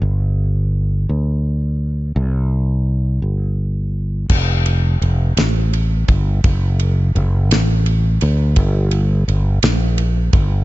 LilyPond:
<<
  \new Staff \with { instrumentName = "Fretless electric bass" } { \clef bass \time 6/8 \key f \major \tempo 4. = 56 g,,4. d,4. | c,4. g,,4. | f,,4 f,,8 a,,4 g,,8 | fis,,4 fis,,8 a,,4 d,8 |
g,,4 g,,8 bes,,4 g,,8 | }
  \new DrumStaff \with { instrumentName = "Drums" } \drummode { \time 6/8 r4. r4. | r4. r4. | <cymc bd>8 cymr8 cymr8 <cymr sn>8 cymr8 <bd cymr>8 | <bd cymr>8 cymr8 cymr8 <cymr sn>8 cymr8 cymr8 |
<bd cymr>8 cymr8 cymr8 <cymr sn>8 cymr8 <bd cymr>8 | }
>>